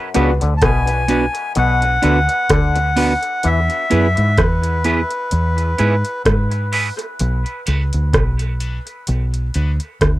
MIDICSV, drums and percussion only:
0, 0, Header, 1, 2, 480
1, 0, Start_track
1, 0, Tempo, 938967
1, 1757, Time_signature, 4, 2, 24, 8
1, 5210, End_track
2, 0, Start_track
2, 0, Title_t, "Drums"
2, 74, Note_on_c, 9, 42, 88
2, 125, Note_off_c, 9, 42, 0
2, 211, Note_on_c, 9, 42, 53
2, 262, Note_off_c, 9, 42, 0
2, 315, Note_on_c, 9, 42, 72
2, 316, Note_on_c, 9, 36, 109
2, 319, Note_on_c, 9, 37, 120
2, 366, Note_off_c, 9, 42, 0
2, 367, Note_off_c, 9, 36, 0
2, 370, Note_off_c, 9, 37, 0
2, 447, Note_on_c, 9, 42, 65
2, 498, Note_off_c, 9, 42, 0
2, 555, Note_on_c, 9, 42, 72
2, 606, Note_off_c, 9, 42, 0
2, 689, Note_on_c, 9, 42, 49
2, 740, Note_off_c, 9, 42, 0
2, 794, Note_on_c, 9, 42, 97
2, 845, Note_off_c, 9, 42, 0
2, 931, Note_on_c, 9, 42, 49
2, 982, Note_off_c, 9, 42, 0
2, 1036, Note_on_c, 9, 42, 82
2, 1087, Note_off_c, 9, 42, 0
2, 1170, Note_on_c, 9, 42, 48
2, 1221, Note_off_c, 9, 42, 0
2, 1276, Note_on_c, 9, 36, 113
2, 1276, Note_on_c, 9, 42, 92
2, 1280, Note_on_c, 9, 37, 121
2, 1327, Note_off_c, 9, 42, 0
2, 1328, Note_off_c, 9, 36, 0
2, 1331, Note_off_c, 9, 37, 0
2, 1409, Note_on_c, 9, 42, 49
2, 1460, Note_off_c, 9, 42, 0
2, 1517, Note_on_c, 9, 46, 84
2, 1568, Note_off_c, 9, 46, 0
2, 1649, Note_on_c, 9, 42, 50
2, 1701, Note_off_c, 9, 42, 0
2, 1754, Note_on_c, 9, 42, 85
2, 1806, Note_off_c, 9, 42, 0
2, 1890, Note_on_c, 9, 42, 39
2, 1941, Note_off_c, 9, 42, 0
2, 1997, Note_on_c, 9, 42, 92
2, 2048, Note_off_c, 9, 42, 0
2, 2132, Note_on_c, 9, 42, 54
2, 2183, Note_off_c, 9, 42, 0
2, 2236, Note_on_c, 9, 42, 72
2, 2237, Note_on_c, 9, 36, 118
2, 2240, Note_on_c, 9, 37, 127
2, 2287, Note_off_c, 9, 42, 0
2, 2288, Note_off_c, 9, 36, 0
2, 2292, Note_off_c, 9, 37, 0
2, 2369, Note_on_c, 9, 42, 62
2, 2420, Note_off_c, 9, 42, 0
2, 2476, Note_on_c, 9, 42, 79
2, 2527, Note_off_c, 9, 42, 0
2, 2610, Note_on_c, 9, 42, 52
2, 2661, Note_off_c, 9, 42, 0
2, 2715, Note_on_c, 9, 42, 94
2, 2766, Note_off_c, 9, 42, 0
2, 2852, Note_on_c, 9, 42, 46
2, 2903, Note_off_c, 9, 42, 0
2, 2957, Note_on_c, 9, 42, 84
2, 3008, Note_off_c, 9, 42, 0
2, 3091, Note_on_c, 9, 42, 52
2, 3142, Note_off_c, 9, 42, 0
2, 3197, Note_on_c, 9, 36, 107
2, 3198, Note_on_c, 9, 42, 77
2, 3202, Note_on_c, 9, 37, 110
2, 3248, Note_off_c, 9, 36, 0
2, 3249, Note_off_c, 9, 42, 0
2, 3253, Note_off_c, 9, 37, 0
2, 3331, Note_on_c, 9, 42, 50
2, 3382, Note_off_c, 9, 42, 0
2, 3439, Note_on_c, 9, 46, 92
2, 3490, Note_off_c, 9, 46, 0
2, 3572, Note_on_c, 9, 42, 56
2, 3623, Note_off_c, 9, 42, 0
2, 3678, Note_on_c, 9, 42, 85
2, 3729, Note_off_c, 9, 42, 0
2, 3813, Note_on_c, 9, 42, 39
2, 3864, Note_off_c, 9, 42, 0
2, 3919, Note_on_c, 9, 42, 82
2, 3970, Note_off_c, 9, 42, 0
2, 4052, Note_on_c, 9, 42, 54
2, 4104, Note_off_c, 9, 42, 0
2, 4158, Note_on_c, 9, 36, 118
2, 4158, Note_on_c, 9, 42, 77
2, 4163, Note_on_c, 9, 37, 127
2, 4209, Note_off_c, 9, 36, 0
2, 4209, Note_off_c, 9, 42, 0
2, 4214, Note_off_c, 9, 37, 0
2, 4290, Note_on_c, 9, 42, 58
2, 4342, Note_off_c, 9, 42, 0
2, 4398, Note_on_c, 9, 42, 79
2, 4449, Note_off_c, 9, 42, 0
2, 4532, Note_on_c, 9, 42, 48
2, 4583, Note_off_c, 9, 42, 0
2, 4636, Note_on_c, 9, 42, 96
2, 4688, Note_off_c, 9, 42, 0
2, 4773, Note_on_c, 9, 42, 48
2, 4824, Note_off_c, 9, 42, 0
2, 4878, Note_on_c, 9, 42, 78
2, 4929, Note_off_c, 9, 42, 0
2, 5010, Note_on_c, 9, 42, 51
2, 5061, Note_off_c, 9, 42, 0
2, 5117, Note_on_c, 9, 36, 103
2, 5117, Note_on_c, 9, 42, 76
2, 5121, Note_on_c, 9, 37, 113
2, 5168, Note_off_c, 9, 36, 0
2, 5168, Note_off_c, 9, 42, 0
2, 5172, Note_off_c, 9, 37, 0
2, 5210, End_track
0, 0, End_of_file